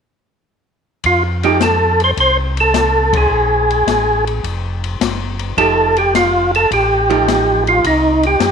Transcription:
1.04 tonewheel organ F2 F4, kick, ride
1.43 hollow-body jazz guitar F3 A3 D#4 G4, tonewheel organ G4, ride
1.61 tonewheel organ A4, snare, hi-hat pedal, ride
2.00 ride
2.04 tonewheel organ C5
2.17 tonewheel organ C2 C5, kick, ride
2.57 tonewheel organ A4, ride
2.74 snare, hi-hat pedal, ride
3.13 kick, ride
3.17 tonewheel organ G#4
3.30 tonewheel organ A#1
3.71 ride
3.87 tonewheel organ A1, snare, hi-hat pedal, ride
4.27 ride
4.43 tonewheel organ F1, kick, ride
4.84 ride
5.00 tonewheel organ F#1, snare, hi-hat pedal, ride
5.39 ride
5.57 tonewheel organ F1 A4, hollow-body jazz guitar F3 A3 D#4 G4, kick, ride
5.97 tonewheel organ G4, ride
6.15 tonewheel organ F4, snare, hi-hat pedal, ride
6.55 tonewheel organ A4, ride
6.71 tonewheel organ A1 G4, kick, ride
7.10 hollow-body jazz guitar F3 A3 D#4 G4, ride
7.28 snare, hi-hat pedal, ride
7.67 tonewheel organ F4, ride
7.84 tonewheel organ C2 D#4, kick, ride
8.23 tonewheel organ G4, ride
8.39 tonewheel organ F#2, snare, hi-hat pedal, ride

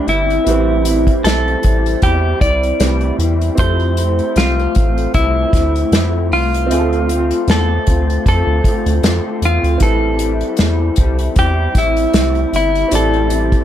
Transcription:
Already playing: upright piano C4 G4 B4
0.07 analog synth bass G1, clean electric guitar C4 E4, closed hi-hat
0.12 clean electric guitar G3
0.30 closed hi-hat
0.44 analog synth bass A1, clean electric guitar A2 E3, upright piano B3 E4 G4, closed hi-hat
0.48 clean electric guitar G3 C4 E4, upright piano C4 B4
0.85 clean electric guitar C4 E4, closed hi-hat
0.89 clean electric guitar G3
1.07 kick, closed hi-hat
1.23 analog synth bass B1, clean electric guitar A2 E3 G3 C4 E4 A4, closed hi-hat
1.27 snare
1.48 closed hi-hat
1.62 analog synth bass A1, clean electric guitar G3 C4 E4, kick, closed hi-hat
1.86 closed hi-hat
2.01 analog synth bass E2, clean electric guitar E3 G3 C4 E4 G4, kick, closed hi-hat
2.41 analog synth bass C2, clean electric guitar G3 C4 E4 D5, kick, closed hi-hat
2.63 closed hi-hat
2.79 analog synth bass C2, clean electric guitar A2 E3 G3 C4 E4, upright piano C4 E4 G4 B4, snare, closed hi-hat
3.01 closed hi-hat
3.19 analog synth bass E2, clean electric guitar C4 E4, closed hi-hat
3.23 clean electric guitar G3
3.41 closed hi-hat
3.55 analog synth bass F2, clean electric guitar F3 A3, upright piano C4 G4 E5, kick, closed hi-hat
3.59 clean electric guitar C4 E4 C5, upright piano A4
3.80 closed hi-hat
3.97 clean electric guitar A3 C4 E4, closed hi-hat
4.19 closed hi-hat
4.36 analog synth bass C2, clean electric guitar F3 A3 C4 F4, snare, closed hi-hat
4.59 closed hi-hat
4.75 analog synth bass A1, clean electric guitar C4, kick, closed hi-hat
4.79 clean electric guitar A3
4.98 closed hi-hat
5.14 analog synth bass C2, clean electric guitar F3 A3 C4 E4, kick, closed hi-hat
5.19 clean electric guitar E4
5.53 analog synth bass D2, clean electric guitar C4 E4, kick, snare, closed hi-hat
5.58 clean electric guitar A3
5.76 closed hi-hat
5.92 analog synth bass F2, clean electric guitar F3 A3 C4, snare, closed hi-hat
5.96 clean electric guitar E4
6.31 analog synth bass C2, clean electric guitar A3 C4 F4, open hi-hat
6.54 closed hi-hat
6.67 analog synth bass D2, clean electric guitar D3 A3, upright piano C4 F4 E5
6.71 clean electric guitar C4 F4, upright piano G#4, closed hi-hat
6.78 upright piano A4
6.93 closed hi-hat
7.09 clean electric guitar A3 C4 F4, closed hi-hat
7.31 closed hi-hat
7.48 analog synth bass E2, clean electric guitar D3 A3 C4 F4 A4, snare, closed hi-hat
7.87 analog synth bass D2, clean electric guitar A3 C4 F4, kick, closed hi-hat
8.10 closed hi-hat
8.26 analog synth bass F2, clean electric guitar D3 A3 C4 F4 A4, kick, closed hi-hat
8.47 analog synth bass D2
8.64 clean electric guitar C4 F4, kick, closed hi-hat
8.69 clean electric guitar A3
8.86 analog synth bass D2, closed hi-hat
9.03 analog synth bass F2, clean electric guitar D3 A3 C4 F4, snare, closed hi-hat
9.42 analog synth bass E2, clean electric guitar C4 F4, closed hi-hat
9.46 clean electric guitar A3
9.63 analog synth bass D2, closed hi-hat
9.78 analog synth bass A1, upright piano C4 E4 G4, kick, closed hi-hat
9.82 clean electric guitar A2 E3 G3 C4 E4 A4, upright piano B4
10.19 clean electric guitar C4 E4, closed hi-hat
10.23 clean electric guitar G3
10.41 closed hi-hat
10.57 analog synth bass E2, clean electric guitar A2 E3 G3 C4, snare, closed hi-hat
10.62 clean electric guitar E4
10.96 analog synth bass C2, clean electric guitar C4 E4, kick, closed hi-hat
11.01 clean electric guitar G3
11.19 closed hi-hat
11.36 analog synth bass E2, clean electric guitar E3 G3 C4 E4 G4, kick, closed hi-hat
11.75 analog synth bass A1, clean electric guitar C4 E4, kick, snare, closed hi-hat
11.79 clean electric guitar G3
11.97 closed hi-hat
12.13 analog synth bass C2, clean electric guitar A2 E3 G3 C4 E4, snare, closed hi-hat
12.35 closed hi-hat
12.53 analog synth bass G1, clean electric guitar C4 E4, closed hi-hat
12.57 clean electric guitar G3
12.75 closed hi-hat
12.88 analog synth bass A1, clean electric guitar A2, upright piano C4 E4 G4, closed hi-hat
12.92 clean electric guitar E3 G3 C4 E4 A4, upright piano D5
13.14 closed hi-hat
13.30 clean electric guitar C4 E4, closed hi-hat
13.34 clean electric guitar G3
13.52 kick, closed hi-hat

